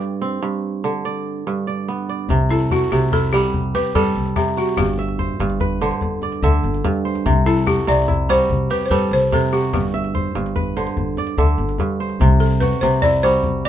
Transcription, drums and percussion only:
2.29 djembe bass medium
2.49 djembe slap soft
2.49 djembe tone medium
2.60 djembe slap medium
2.70 djembe bass medium
3.02 djembe slap soft
3.12 djembe slap soft
3.12 djembe tone medium
3.12 djembe bass medium
3.43 djembe slap medium
3.54 djembe slap soft
3.54 djembe bass medium
3.75 djembe slap soft
3.75 djembe tone medium
3.85 djembe slap soft
3.95 djembe bass medium
4.26 djembe slap medium
4.36 djembe tone medium
4.36 djembe bass medium
4.67 djembe slap soft
4.77 djembe bass medium
4.98 djembe slap soft
4.98 djembe tone medium
5.08 djembe slap soft
5.19 djembe bass medium
5.50 djembe slap soft
5.60 djembe slap soft
5.60 djembe tone medium
5.60 djembe bass medium
5.91 djembe slap soft
6.01 djembe slap soft
6.01 djembe bass medium
6.22 djembe slap soft
6.22 djembe tone medium
6.32 djembe slap soft
6.42 djembe bass medium
6.74 djembe slap soft
6.85 djembe tone medium
6.85 djembe bass medium
6.95 djembe slap soft
7.15 djembe slap soft
7.26 djembe bass medium
7.46 djembe slap soft
7.46 djembe tone medium
7.56 djembe slap soft
7.67 djembe bass medium
7.98 djembe slap soft
8.08 djembe slap soft
8.08 djembe tone medium
8.08 djembe bass medium
8.40 djembe slap soft
8.49 djembe slap soft
8.49 djembe bass medium
8.70 djembe slap soft
8.70 djembe tone medium
8.81 djembe slap soft
8.91 djembe bass medium
9.22 djembe slap soft
9.32 djembe tone medium
9.32 djembe bass medium
9.42 djembe slap soft
9.63 djembe slap soft
9.73 djembe bass medium
9.84 djembe slap soft
9.94 djembe tone medium
10.04 djembe slap soft
10.15 djembe slap soft
10.15 djembe bass medium
10.26 djembe slap soft
10.36 djembe slap soft
10.46 djembe slap soft
10.56 djembe tone medium
10.56 djembe bass medium
10.66 djembe slap soft
10.87 djembe slap soft
10.97 djembe slap soft
10.97 djembe bass medium
11.07 djembe slap soft
11.17 djembe tone medium
11.27 djembe slap soft
11.38 djembe bass medium
11.69 djembe slap soft
11.78 djembe slap soft
11.78 djembe tone medium
11.78 djembe bass medium
11.89 djembe slap soft
12.09 djembe slap soft
12.20 djembe bass medium
12.40 djembe slap soft
12.40 djembe tone medium
12.51 djembe slap soft
12.61 djembe bass medium
13.02 djembe slap soft
13.02 djembe tone medium
13.02 djembe bass medium
13.33 djembe slap soft
13.43 djembe slap soft
13.43 djembe bass medium

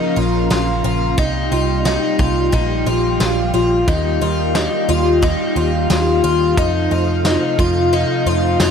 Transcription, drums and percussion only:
0.51 snare loud
0.51 ride medium
0.51 tambourine medium
1.18 kick loud
1.18 ride medium
1.85 snare loud
1.85 ride medium
1.85 tambourine medium
2.19 kick medium
2.53 kick medium
2.53 ride medium
3.20 snare loud
3.20 ride medium
3.20 tambourine medium
3.88 kick loud
3.88 ride medium
4.55 snare loud
4.55 ride medium
4.55 tambourine medium
5.23 kick medium
5.23 ride medium
5.90 snare loud
5.90 ride medium
5.90 tambourine medium
6.57 kick loud
6.57 ride medium
7.25 snare loud
7.25 ride medium
7.25 tambourine medium
7.59 kick medium
7.93 ride medium
8.60 snare loud
8.60 ride medium
8.60 tambourine medium

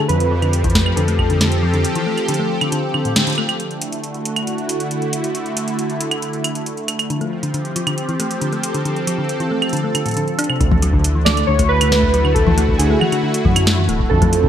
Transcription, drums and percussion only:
0.09 closed hi-hat medium
0.20 closed hi-hat soft
0.42 closed hi-hat soft
0.42 claves soft
0.53 closed hi-hat medium
0.64 kick loud
0.64 closed hi-hat soft
0.70 closed hi-hat soft
0.75 kick loud
0.75 snare loud
0.75 closed hi-hat soft
0.81 closed hi-hat soft
0.86 claves medium
0.97 closed hi-hat medium
1.08 closed hi-hat medium
1.19 kick loud
1.19 claves medium
1.30 closed hi-hat soft
1.41 snare loud
1.41 closed hi-hat medium
1.52 closed hi-hat medium
1.74 closed hi-hat soft
1.85 closed hi-hat medium
1.95 closed hi-hat medium
2.18 closed hi-hat soft
2.18 claves soft
2.28 closed hi-hat medium
2.34 closed hi-hat medium
2.61 closed hi-hat soft
2.61 claves medium
2.72 closed hi-hat medium
2.94 claves medium
3.05 closed hi-hat soft
3.16 snare loud
3.16 closed hi-hat medium
3.27 closed hi-hat medium
3.30 closed hi-hat soft
3.35 closed hi-hat soft
3.35 claves medium
3.49 closed hi-hat soft
3.49 claves medium
3.60 closed hi-hat soft
3.71 closed hi-hat soft
3.82 closed hi-hat medium
3.92 closed hi-hat medium
4.04 closed hi-hat medium
4.14 closed hi-hat soft
4.25 closed hi-hat medium
4.36 closed hi-hat soft
4.36 claves medium
4.47 closed hi-hat medium
4.58 closed hi-hat soft
4.69 closed hi-hat medium
4.80 closed hi-hat soft
4.91 closed hi-hat medium
5.02 closed hi-hat soft
5.13 closed hi-hat medium
5.24 closed hi-hat soft
5.35 closed hi-hat medium
5.46 closed hi-hat soft
5.57 closed hi-hat loud
5.68 closed hi-hat soft
5.79 closed hi-hat medium
5.90 closed hi-hat soft
6.01 closed hi-hat medium
6.11 closed hi-hat soft
6.11 claves medium
6.22 closed hi-hat medium
6.33 closed hi-hat soft
6.44 closed hi-hat medium
6.44 claves medium
6.55 closed hi-hat medium
6.66 closed hi-hat medium
6.77 closed hi-hat soft
6.88 closed hi-hat medium
6.88 claves medium
6.99 closed hi-hat medium
6.99 claves medium
7.10 closed hi-hat soft
7.21 closed hi-hat soft
7.43 closed hi-hat medium
7.54 closed hi-hat medium
7.65 closed hi-hat soft
7.76 closed hi-hat medium
7.87 closed hi-hat medium
7.87 claves medium
7.98 closed hi-hat medium
8.09 closed hi-hat soft
8.20 closed hi-hat medium
8.31 closed hi-hat medium
8.41 closed hi-hat medium
8.53 closed hi-hat soft
8.63 closed hi-hat loud
8.74 closed hi-hat soft
8.85 closed hi-hat soft
8.96 closed hi-hat soft
9.07 closed hi-hat medium
9.29 closed hi-hat medium
9.40 closed hi-hat soft
9.62 closed hi-hat soft
9.62 claves medium
9.69 closed hi-hat soft
9.73 closed hi-hat medium
9.77 closed hi-hat soft
9.95 closed hi-hat medium
9.95 claves medium
10.06 closed hi-hat soft
10.08 closed hi-hat soft
10.11 closed hi-hat soft
10.14 closed hi-hat soft
10.17 closed hi-hat medium
10.28 closed hi-hat soft
10.39 closed hi-hat medium
10.39 claves medium
10.44 closed hi-hat medium
10.50 claves medium
10.61 kick loud
10.61 closed hi-hat medium
10.71 kick loud
10.71 high tom medium
10.82 closed hi-hat medium
10.93 kick loud
11.04 closed hi-hat loud
11.26 snare loud
11.26 high tom medium
11.26 claves medium
11.37 closed hi-hat medium
11.37 claves soft
11.59 kick medium
11.59 closed hi-hat medium
11.81 closed hi-hat loud
11.81 claves medium
11.92 snare loud
12.03 kick loud
12.14 closed hi-hat medium
12.25 claves medium
12.36 kick loud
12.36 closed hi-hat medium
12.47 kick loud
12.47 high tom medium
12.58 closed hi-hat medium
12.69 kick loud
12.79 closed hi-hat loud
13.01 high tom medium
13.01 claves medium
13.12 closed hi-hat medium
13.12 claves soft
13.34 closed hi-hat medium
13.45 kick loud
13.45 high tom medium
13.56 closed hi-hat loud
13.56 claves medium
13.67 snare loud
13.89 closed hi-hat medium
14.00 kick medium
14.11 kick loud
14.22 kick loud
14.22 closed hi-hat medium
14.22 high tom medium
14.33 closed hi-hat medium
14.44 kick loud

